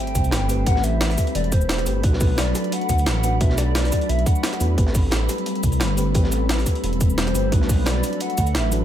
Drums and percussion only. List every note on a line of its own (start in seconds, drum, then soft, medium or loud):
0.07 closed hi-hat soft
0.15 kick medium
0.15 closed hi-hat medium
0.15 shaker medium
0.24 closed hi-hat soft
0.24 shaker soft
0.31 snare loud
0.31 closed hi-hat medium
0.31 closed hi-hat loud
0.49 closed hi-hat medium
0.49 open hi-hat medium
0.49 shaker medium
0.66 kick loud
0.66 closed hi-hat medium
0.66 closed hi-hat loud
0.76 snare soft
0.84 closed hi-hat medium
0.84 shaker medium
1.01 snare loud
1.01 closed hi-hat medium
1.10 snare soft
1.18 kick medium
1.18 closed hi-hat medium
1.18 open hi-hat medium
1.18 shaker medium
1.27 closed hi-hat soft
1.35 closed hi-hat medium
1.44 closed hi-hat soft
1.52 kick loud
1.52 closed hi-hat medium
1.52 shaker medium
1.61 shaker soft
1.69 snare loud
1.69 closed hi-hat loud
1.69 closed hi-hat medium
1.78 snare soft
1.86 closed hi-hat medium
1.86 open hi-hat medium
1.86 shaker medium
2.03 kick loud
2.03 closed hi-hat medium
2.13 snare medium
2.21 kick loud
2.21 closed hi-hat medium
2.21 open hi-hat medium
2.21 shaker medium
2.38 snare loud
2.38 closed hi-hat medium
2.55 snare soft
2.55 closed hi-hat medium
2.55 open hi-hat medium
2.55 shaker medium
2.64 closed hi-hat soft
2.72 closed hi-hat medium
2.72 closed hi-hat loud
2.81 closed hi-hat soft
2.89 kick medium
2.89 closed hi-hat medium
2.89 shaker medium
2.98 closed hi-hat soft
2.98 shaker soft
3.06 snare loud
3.06 closed hi-hat medium
3.23 closed hi-hat medium
3.23 open hi-hat medium
3.23 shaker medium
3.40 kick loud
3.40 closed hi-hat medium
3.50 snare soft
3.58 snare medium
3.58 closed hi-hat medium
3.58 shaker medium
3.75 snare loud
3.75 closed hi-hat medium
3.84 snare soft
3.92 kick medium
3.92 closed hi-hat medium
3.92 open hi-hat medium
3.92 shaker medium
4.01 closed hi-hat soft
4.09 closed hi-hat medium
4.19 closed hi-hat soft
4.26 kick loud
4.26 closed hi-hat medium
4.26 shaker medium
4.36 shaker soft
4.43 snare loud
4.43 closed hi-hat medium
4.53 snare soft
4.60 closed hi-hat medium
4.60 open hi-hat medium
4.60 shaker medium
4.78 kick loud
4.78 closed hi-hat medium
4.87 snare medium
4.95 kick loud
4.95 closed hi-hat medium
4.95 open hi-hat medium
4.95 shaker medium
5.11 snare loud
5.11 closed hi-hat medium
5.29 snare soft
5.29 closed hi-hat medium
5.29 open hi-hat medium
5.29 shaker medium
5.38 closed hi-hat soft
5.46 closed hi-hat medium
5.55 closed hi-hat soft
5.63 kick medium
5.63 closed hi-hat medium
5.63 shaker medium
5.72 closed hi-hat soft
5.72 shaker soft
5.80 snare loud
5.80 closed hi-hat medium
5.97 closed hi-hat medium
5.97 open hi-hat medium
5.97 shaker medium
6.14 kick loud
6.14 closed hi-hat medium
6.24 snare soft
6.32 closed hi-hat medium
6.32 shaker medium
6.49 snare loud
6.49 closed hi-hat medium
6.58 snare soft
6.66 kick medium
6.66 closed hi-hat medium
6.66 open hi-hat medium
6.66 shaker medium
6.75 closed hi-hat soft
6.84 closed hi-hat medium
6.93 closed hi-hat soft
7.00 kick loud
7.00 closed hi-hat medium
7.00 shaker medium
7.10 shaker soft
7.18 snare loud
7.18 closed hi-hat medium
7.27 snare soft
7.35 closed hi-hat medium
7.35 open hi-hat medium
7.35 shaker medium
7.52 kick loud
7.52 closed hi-hat loud
7.52 closed hi-hat medium
7.61 snare medium
7.69 kick loud
7.69 closed hi-hat medium
7.69 open hi-hat medium
7.69 shaker medium
7.86 snare loud
7.86 closed hi-hat medium
8.04 closed hi-hat medium
8.04 open hi-hat medium
8.04 shaker medium
8.13 closed hi-hat soft
8.20 closed hi-hat medium
8.30 closed hi-hat soft
8.38 kick medium
8.38 closed hi-hat medium
8.38 shaker medium
8.47 closed hi-hat soft
8.47 shaker soft
8.55 snare loud
8.55 closed hi-hat medium
8.72 closed hi-hat medium
8.72 open hi-hat medium
8.72 shaker medium